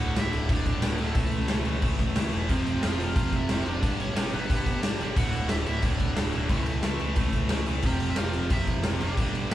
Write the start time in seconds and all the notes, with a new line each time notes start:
Already playing: D2 A2 D3 F#4 F#5
0.00 D1
0.14 D1 D2 A2 D3, snare, crash
0.19 E4 E5
0.30 D1 D2 A2 D3, crash
0.49 D1 D2 A2 D3 D4, kick, crash
0.53 D5
0.66 D1, kick, crash
0.82 D1 D2 A2 D3, snare, crash
0.98 D1 D2 A2 D3 A3 A4, crash
1.15 C#2 A2 E3 A3, kick, crash
1.32 C#2, crash
1.48 C#2 A2 E3 A3, snare, crash
1.65 C#2 A2 E3 A3, crash
1.82 C#2 A2 E3 A3, kick, crash
1.99 C#2, kick, crash
2.16 C#2 A2 E3 A3, snare, crash
2.33 E1 A2 E3 A3, crash
2.49 F1 F2 C3 F3 C4 C5, kick, crash
2.65 F1, crash
2.82 F1 F2 C3 F3 F4, snare, crash
2.86 F5
2.98 F1 F2 C3 F3, crash
3.14 F1 F2 C3 F3 F4 F5, kick, crash
3.32 F1 E4 E5, kick, crash
3.49 F1 F2 C3 F3, snare, crash
3.65 F1 F2 C3 F3 D4 D5, crash
3.83 G1 G2 D3 G3, kick, crash
4.00 G1 C#4 C#5, crash
4.15 G1 G2 D3 G3, snare, crash
4.32 G1 G2 D3 G3 B3 B4, crash
4.49 G1 G2 D3 G3 B3 B4, kick, crash
4.66 G1, kick, crash
4.81 G1 G2 D3 G3 D4 D5, snare, crash
4.98 G1 G2 D3 G3, crash
5.16 D1 D2 A2 D3 F#4 F#5, kick, crash
5.32 D1, crash
5.48 D1 D2 A2 D3 E4 E5, snare, crash
5.66 D1 D2 A2 D3 E4 E5, crash
5.82 D1 D2 A2 D3 D4 D5, kick, crash
6.00 D1, kick, crash
6.15 D1 D2 A2 D3, snare, crash
6.32 D1 D2 A2 D3, crash
6.49 C#2 A2 E3 A3, kick, crash
6.53 A4
6.66 C#2, crash
6.82 C#2 A2 E3 A3, snare, crash
6.99 C#2 A2 E3 A3, crash
7.16 C#2 A2 E3 A3, kick, crash
7.32 C#2, kick, crash
7.49 C#2 A2 E3 A3, snare, crash
7.66 C#2 A2 E3 A3, crash
7.82 F1 F2 C3 F3 G4, kick, crash
7.87 G5
8.00 F1, crash
8.10 E5
8.16 F1 F2 C3 F3 F4 F5, snare, crash
8.33 F1 F2 C3 F3, crash
8.50 F1 F2 C3 F3 E4 E5, kick, crash
8.67 F1, kick, crash
8.84 F1 F2 C3 F3, snare, crash
9.00 F1 F2 C3 F3 D4 D5, crash
9.17 G1 G2 D3 G3, kick, crash
9.34 G1, crash
9.50 G1 G2 D3 G3 B3 B4